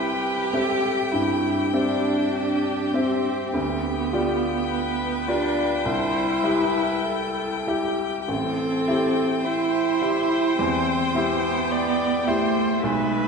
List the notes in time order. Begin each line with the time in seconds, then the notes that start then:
Already playing: C2 C4 G4 B4 E5 G5
0.53 C4 G4 A4 E5
1.12 G2 E4 G4
1.73 C4 D4 G4 E5
2.94 C4 G4 E5
3.54 D2 B3 G5
4.13 F4 G4 D5
4.71 B4
5.27 D4 F4 G4 D5
5.84 C2 E4 C5
6.43 E4 G4 B4 E5
7.05 A4
7.67 E4 G4 E5
8.28 A1 C4 A4 G5
8.88 E4 G4 E5
9.45 E4 C5
10.02 E4 G4 E5
10.58 E2 C4
11.15 B3 E4 G4 E5
11.71 D5
12.27 A3 E4 G4 C5 E5
12.82 B1 G#3 B4 E5